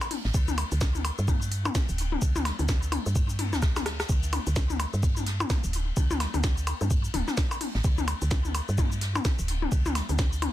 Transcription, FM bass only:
0.25 A1
0.34 D2
0.72 D2
1.19 G2
1.89 D1
2.22 D2
2.59 D2
3.06 G2
3.53 D2
4.09 D2
4.47 D2
4.93 G2
5.64 D1
5.97 D2
6.34 D2
6.81 G2
7.14 D1
7.75 A1
7.84 D2
8.22 D2
8.69 G2
9.39 D1
9.72 D2
10.09 D2

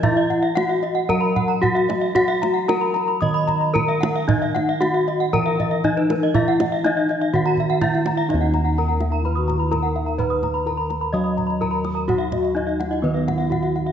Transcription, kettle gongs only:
Already playing: E3
0.04 E4
0.57 E4
1.09 F#3
1.63 E4
2.16 F#4
2.68 E4
3.22 D#3
3.75 E4
4.28 D#4
4.81 E4
5.33 E3
5.85 E4
6.34 E4
6.83 E4
7.34 D#3
7.82 E4
8.29 D#4
8.34 D#2
8.77 E4
9.71 E4
10.18 B4
10.66 E4
11.14 F#3
11.61 E4
12.08 F#4
12.55 E4
13.04 D#3
13.51 E4

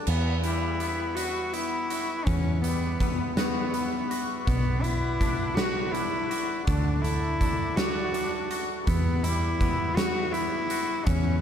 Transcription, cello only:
0.06 B3
0.43 E4
1.15 F#4
1.53 E4
2.25 C#4
2.61 B3
3.36 B3
4.46 B3
4.82 E4
5.55 F#4
5.91 E4
6.66 D4
7.02 E4
7.77 F#4
8.86 B3
9.24 E4
9.96 F#4
10.32 E4
11.06 C#4

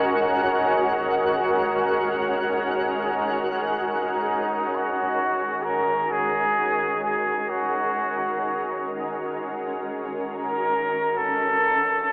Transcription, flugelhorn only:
3.78 D#4
4.75 F#4
5.64 A#4
6.12 G#4
7.04 G#4
7.49 F#4
10.27 A#4
11.17 A4

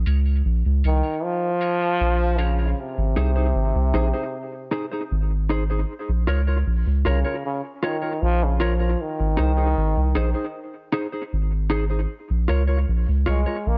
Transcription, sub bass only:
0.06 C#2
0.45 A#1
0.66 C#2
0.84 C2
2.01 A#1
2.98 G#1
3.17 C2
3.55 G#1
3.75 C2
3.94 A#1
5.11 G#1
6.09 A#1
6.28 C#2
6.67 A#1
6.87 C#2
7.06 C2
8.22 A#1
9.20 G#1
9.39 C2
9.77 G#1
9.97 C2
10.16 A#1
11.33 G#1
12.30 A#1
12.49 C#2
12.89 A#1
13.09 C#2
13.28 C2
13.66 A#1

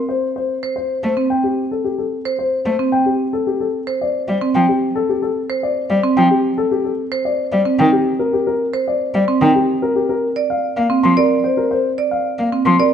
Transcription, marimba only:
0.63 C5
1.17 C4
2.25 C5
2.79 C4
3.87 C5
4.41 C4
5.50 C5
6.04 C4
7.12 C5
7.65 C4
8.73 C5
9.28 C4
10.36 D5
10.90 C4
11.17 D5
11.98 D5
12.52 C4
12.80 D5

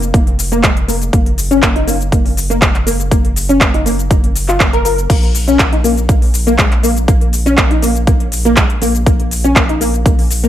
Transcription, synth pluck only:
0.14 A#3
0.52 A#3
0.64 G#3
0.88 A#3
1.13 A#3
1.51 C#4
1.63 A#3
1.76 D#4
1.87 A#3
2.12 A#3
2.50 A#3
2.62 G#3
2.87 A#3
3.11 A#3
3.49 C#4
3.61 A#3
3.74 D#4
3.86 A#3
4.11 A#3
4.49 F4
4.60 A#3
4.73 A#4
4.85 A#4
5.10 A#3
5.48 C#4
5.59 A#3
5.72 D#4
5.84 A#3
6.09 A#3
6.47 A#3
6.59 G#3
6.83 A#3
7.08 A#3
7.46 C#4
7.58 A#3
7.71 D#4
7.83 A#3
8.07 A#3
8.45 A#3
8.57 G#3
8.82 A#3
9.06 A#3
9.44 C#4
9.56 A#3
9.69 D#4
9.81 A#3
10.06 A#3
10.44 A#3

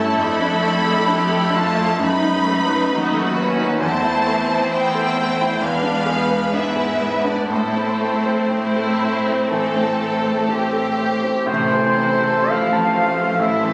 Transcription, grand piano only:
Already playing: G2 A3 E4 A4
0.18 F2
0.41 D4
0.63 A3
0.84 A4
1.08 D4
1.29 A4
1.50 D4
1.75 A3
1.98 F#2
2.21 D#4
2.44 A3
2.67 B4
2.91 D#4
3.14 A4
3.36 B4
3.58 D#4
3.81 E2
4.04 E4
4.26 A3
4.48 C5
4.72 E4
4.95 A4
5.17 C5
5.41 E4
5.62 E2
5.82 D4
6.06 G#3
6.29 B4
6.53 D4
6.76 G#4
7.00 B4
7.24 D4
7.52 A2
7.77 C4
8.01 A3
8.26 C5
8.51 C4
8.76 A4
9.02 C5
9.26 C4
9.51 E3
9.75 C4
10.00 A3
10.23 C5
10.48 C4
10.73 A4
10.98 C5
11.23 C4
11.46 A2
11.71 E3
11.97 C4
12.24 A4
12.48 C5
12.73 A5
12.95 C5
13.19 A4
13.39 A2
13.63 E3

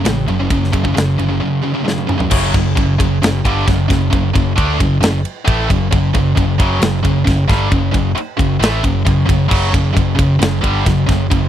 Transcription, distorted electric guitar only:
0.04 F#2 C#3
0.28 F#2 C#3
0.39 F#2 C#3
0.51 F#2 C#3
0.72 F#2 C#3
0.83 F#2 C#3
0.94 F#2 C#3
1.18 F#2 C#3
1.29 F#2 C#3
1.40 F#2 C#3
1.63 F#2 C#3
1.75 F#2 C#3
1.85 F#2 C#3
2.08 F#2 C#3
2.19 F#2 C#3
2.31 F#2 C#3 F#3
2.53 F#2 C#3
2.75 F#2 C#3
2.98 F#2 C#3
3.22 F#2 C#3
3.45 G2 D3 G3
3.67 F#2 C#3
3.88 F#2 C#3
4.11 F#2 C#3
4.34 F#2 C#3
4.56 D3 A3 D4
4.78 F#2 C#3
5.01 F#2 C#3
5.45 A2 E3 A3
5.68 F#2 C#3
5.91 F#2 C#3
6.14 F#2 C#3
6.36 F#2 C#3
6.60 F#2 C#3 F#3
6.80 F#2 C#3
7.03 F#2 C#3
7.24 F#2 C#3
7.48 G2 D3 G3
7.70 F#2 C#3
7.92 F#2 C#3
8.15 muted distorted electric guitar stroke
8.37 F#2 C#3
8.60 A2 E3 A3
8.83 F#2 C#3
9.05 F#2 C#3
9.25 F#2 C#3
9.48 F#2 C#3 F#3
9.71 F#2 C#3
9.94 F#2 C#3
10.15 F#2 C#3
10.39 F#2 C#3
10.61 G2 D3 G3
10.85 F#2 C#3
11.06 F#2 C#3
11.31 F#2 C#3

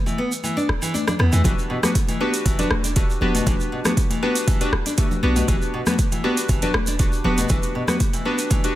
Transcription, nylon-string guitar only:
0.06 E3
0.18 B3
0.44 E3
0.57 D4
0.82 E3
0.94 D4
1.08 D4
1.19 B3
1.33 E3
1.44 E3
1.70 B2
1.83 B3
2.09 E3
2.20 B3
2.45 E3
2.59 D4
2.84 D4
2.96 A3
3.22 B3
3.35 B2
3.47 E3
3.72 B2
3.85 B3
4.10 E3
4.23 B3
4.48 E3
4.61 D4
4.86 D4
4.98 A3
5.23 B3
5.36 B2
5.48 E3
5.74 B2
5.87 B3
6.12 E3
6.24 B3
6.49 E3
6.62 D4
6.88 D4
6.99 A3
7.24 B3
7.38 B2
7.50 E3
7.75 B2
7.88 B3
8.13 E3
8.25 B3
8.50 E3
8.64 D4

